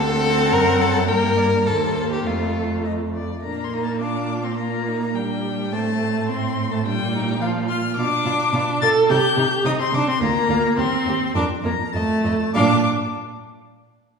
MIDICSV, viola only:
0, 0, Header, 1, 2, 480
1, 0, Start_track
1, 0, Key_signature, -2, "major"
1, 0, Tempo, 578035
1, 911, Time_signature, 2, 2, 24, 8
1, 4283, Tempo, 563910
1, 9563, Tempo, 594648
1, 11851, End_track
2, 0, Start_track
2, 0, Title_t, "Viola"
2, 0, Program_c, 0, 41
2, 0, Note_on_c, 0, 60, 70
2, 893, Note_off_c, 0, 60, 0
2, 898, Note_on_c, 0, 58, 66
2, 1377, Note_off_c, 0, 58, 0
2, 1384, Note_on_c, 0, 58, 58
2, 1872, Note_on_c, 0, 57, 52
2, 1885, Note_off_c, 0, 58, 0
2, 2685, Note_off_c, 0, 57, 0
2, 2853, Note_on_c, 0, 58, 50
2, 3328, Note_on_c, 0, 62, 52
2, 3340, Note_off_c, 0, 58, 0
2, 3681, Note_on_c, 0, 60, 45
2, 3693, Note_off_c, 0, 62, 0
2, 3796, Note_off_c, 0, 60, 0
2, 3801, Note_on_c, 0, 58, 54
2, 4270, Note_off_c, 0, 58, 0
2, 4280, Note_on_c, 0, 55, 55
2, 4767, Note_on_c, 0, 57, 60
2, 4780, Note_off_c, 0, 55, 0
2, 5247, Note_on_c, 0, 60, 61
2, 5260, Note_off_c, 0, 57, 0
2, 5604, Note_off_c, 0, 60, 0
2, 5609, Note_on_c, 0, 57, 54
2, 5657, Note_off_c, 0, 57, 0
2, 5727, Note_on_c, 0, 55, 66
2, 6194, Note_off_c, 0, 55, 0
2, 6199, Note_on_c, 0, 53, 65
2, 6430, Note_off_c, 0, 53, 0
2, 6435, Note_on_c, 0, 65, 70
2, 6503, Note_off_c, 0, 65, 0
2, 6683, Note_on_c, 0, 62, 77
2, 7401, Note_on_c, 0, 69, 91
2, 7414, Note_off_c, 0, 62, 0
2, 7642, Note_on_c, 0, 67, 79
2, 7655, Note_off_c, 0, 69, 0
2, 8112, Note_on_c, 0, 63, 81
2, 8125, Note_off_c, 0, 67, 0
2, 8231, Note_on_c, 0, 60, 70
2, 8243, Note_off_c, 0, 63, 0
2, 8345, Note_off_c, 0, 60, 0
2, 8350, Note_on_c, 0, 62, 85
2, 8469, Note_on_c, 0, 60, 73
2, 8482, Note_off_c, 0, 62, 0
2, 8584, Note_on_c, 0, 58, 87
2, 8597, Note_off_c, 0, 60, 0
2, 9066, Note_on_c, 0, 60, 85
2, 9079, Note_off_c, 0, 58, 0
2, 9553, Note_off_c, 0, 60, 0
2, 9558, Note_on_c, 0, 62, 78
2, 9623, Note_off_c, 0, 62, 0
2, 9788, Note_on_c, 0, 58, 73
2, 9852, Note_off_c, 0, 58, 0
2, 10036, Note_on_c, 0, 57, 72
2, 10512, Note_off_c, 0, 57, 0
2, 10529, Note_on_c, 0, 62, 75
2, 10790, Note_off_c, 0, 62, 0
2, 11851, End_track
0, 0, End_of_file